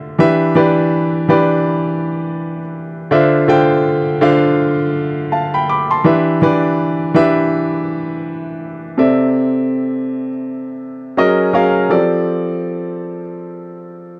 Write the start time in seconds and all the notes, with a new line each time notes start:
Already playing: D3 D4 F4 C5 E5
0.19 E3 D4 G4 B4 E5
0.55 E3 D4 G4 B4 D5
1.28 E3 D4 G4 B4 D5
3.11 D3 D4 F4 C5 E5
3.48 D3 D4 F4 C5 G5
4.21 D3 D4 F4 C5 F5
5.32 F5 A5
5.54 G5 B5
5.69 B5 D6
5.91 A5 C6
6.04 E3 D4 G4 B4 E5
6.42 E3 D4 G4 B4 D5
7.14 E3 D4 G4 B4 E5
8.98 C3 C4 A4 D5 E5
11.17 F#3 C#4 G#4 A#4 D#5
11.53 F#3 C#4 G#4 A#4 F5
11.89 F3 C4 G4 A4 D5